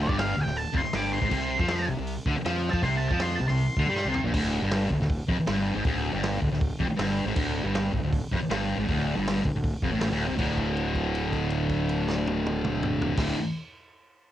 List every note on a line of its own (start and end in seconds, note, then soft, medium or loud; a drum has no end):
0.02 0.19 D5 loud
0.09 0.35 G1 loud
0.09 0.37 G2 loud
0.09 kick loud
0.19 0.37 F5 medium
0.19 snare loud
0.19 open hi-hat medium
0.37 0.45 D1 medium
0.37 0.45 D2 medium
0.42 0.57 G5 loud
0.46 0.64 D1 medium
0.46 0.62 D2 medium
0.46 snare soft
0.55 0.75 A5 loud
0.55 open hi-hat medium
0.73 0.83 F1 loud
0.73 0.83 F2 loud
0.73 kick loud
0.78 0.96 C6 medium
0.83 muted distorted electric guitar stroke medium
0.83 muted fingered electric bass stroke soft
0.83 snare soft
0.93 1.20 G1 loud
0.93 1.20 G2 loud
0.93 1.13 D6 loud
0.93 snare loud
0.93 open hi-hat medium
1.13 1.86 C6 loud
1.21 1.31 G#1 loud
1.21 1.29 G#2 loud
1.21 kick loud
1.30 1.58 C2 loud
1.30 1.59 C3 loud
1.30 kick loud
1.30 crash loud
1.59 1.86 F2 loud
1.59 1.87 F3 loud
1.59 kick loud
1.68 snare loud
1.68 open hi-hat medium
1.88 1.97 C2 medium
1.88 1.97 C3 medium
1.99 2.16 C2 medium
1.99 2.13 C3 medium
2.07 open hi-hat medium
2.26 2.35 D2 loud
2.26 2.35 D3 loud
2.26 kick loud
2.36 muted distorted electric guitar stroke medium
2.36 muted fingered electric bass stroke soft
2.45 2.71 F2 medium
2.45 2.72 F3 loud
2.45 snare loud
2.45 open hi-hat medium
2.70 2.82 F2 loud
2.70 2.82 F3 loud
2.70 2.83 A5 loud
2.70 kick loud
2.82 3.09 C2 loud
2.82 3.10 C3 loud
2.82 2.95 C6 loud
2.82 kick loud
2.82 open hi-hat medium
2.97 3.08 A5 medium
3.09 3.37 F2 loud
3.09 3.39 F3 loud
3.09 3.21 A5 loud
3.09 kick loud
3.19 3.36 C6 loud
3.19 snare loud
3.19 open hi-hat medium
3.36 3.49 C2 medium
3.36 3.47 A5 loud
3.40 3.48 C3 medium
3.48 3.67 C2 medium
3.48 3.65 C3 medium
3.48 4.21 C6 loud
3.48 snare soft
3.57 open hi-hat medium
3.77 3.86 D2 loud
3.77 3.87 D3 loud
3.77 kick loud
3.86 4.04 G2 loud
3.86 4.06 G3 loud
3.96 snare medium
4.05 4.23 C2 loud
4.05 4.25 C3 loud
4.14 floor tom loud
4.24 4.33 A#1 loud
4.24 4.34 A#2 loud
4.33 4.60 D1 loud
4.33 4.63 D2 loud
4.33 kick loud
4.33 crash loud
4.62 4.89 G1 medium
4.62 4.91 G2 loud
4.71 snare loud
4.71 open hi-hat medium
4.91 4.99 D1 medium
4.91 4.99 D2 medium
4.91 kick medium
5.00 5.18 D1 medium
5.00 5.16 D2 medium
5.00 snare soft
5.10 kick loud
5.10 open hi-hat medium
5.28 5.36 F1 loud
5.28 5.38 F2 loud
5.28 kick medium
5.37 muted fingered electric bass stroke soft
5.37 muted distorted electric guitar stroke medium
5.47 5.74 G1 loud
5.47 5.74 G2 loud
5.47 snare loud
5.47 open hi-hat medium
5.75 5.84 G#1 loud
5.75 5.85 G#2 loud
5.84 6.12 D1 loud
5.84 6.13 D2 loud
5.84 kick loud
5.84 open hi-hat medium
6.13 6.40 G1 loud
6.13 6.41 G2 loud
6.23 snare loud
6.23 open hi-hat medium
6.42 6.51 D1 medium
6.42 6.50 D2 medium
6.42 kick loud
6.51 6.69 D1 medium
6.51 6.67 D2 medium
6.51 snare soft
6.61 kick loud
6.61 open hi-hat medium
6.80 6.88 F1 loud
6.80 6.88 F2 loud
6.80 kick medium
6.89 muted fingered electric bass stroke soft
6.89 muted distorted electric guitar stroke medium
6.97 7.25 G1 loud
6.97 7.26 G2 loud
6.97 snare loud
6.97 open hi-hat medium
7.26 7.35 G#1 loud
7.26 7.35 G#2 loud
7.36 7.63 D1 loud
7.36 7.64 D2 loud
7.36 kick loud
7.36 crash loud
7.64 7.91 G1 medium
7.64 7.93 G2 loud
7.75 snare loud
7.75 open hi-hat medium
7.94 8.02 D1 medium
7.94 8.03 D2 medium
7.94 kick medium
8.03 8.21 D1 medium
8.03 8.19 D2 medium
8.13 kick loud
8.13 open hi-hat medium
8.32 8.40 F1 loud
8.32 8.41 F2 loud
8.32 kick medium
8.42 muted distorted electric guitar stroke medium
8.49 8.76 G1 loud
8.49 8.78 G2 loud
8.49 snare loud
8.49 open hi-hat medium
8.77 8.87 G#1 medium
8.77 8.87 G#2 loud
8.87 9.15 D1 loud
8.87 9.15 D2 loud
8.87 kick loud
8.87 open hi-hat medium
9.16 9.43 G1 loud
9.16 9.44 G2 loud
9.27 snare loud
9.27 open hi-hat medium
9.45 9.54 D1 medium
9.45 9.54 D2 medium
9.45 kick loud
9.55 9.72 D1 medium
9.55 9.70 D2 medium
9.64 kick loud
9.64 open hi-hat medium
9.82 9.91 F1 loud
9.82 9.92 F2 loud
9.82 kick medium
9.92 10.09 A1 medium
9.92 10.10 A2 loud
10.01 snare loud
10.01 open hi-hat medium
10.10 10.28 D1 loud
10.10 10.28 D2 loud
10.28 10.38 C2 medium
10.28 10.36 C3 loud
10.36 13.09 D1 loud
10.36 13.16 D2 loud
10.36 13.19 A2 loud
10.36 13.20 D3 loud
10.36 kick loud
10.36 crash medium
10.57 kick medium
10.57 crash soft
10.77 crash soft
10.95 kick medium
10.95 crash soft
11.15 crash medium
11.32 kick medium
11.32 crash medium
11.50 crash medium
11.69 kick medium
11.69 crash medium
11.89 crash medium
12.08 snare loud
12.27 high tom loud
12.46 high tom loud
12.64 mid tom loud
12.83 mid tom loud
13.02 floor tom loud
13.16 13.33 D1 loud
13.16 13.33 D2 loud
13.16 13.35 A2 loud
13.16 kick loud
13.16 snare loud
13.16 crash loud
13.21 13.36 D3 loud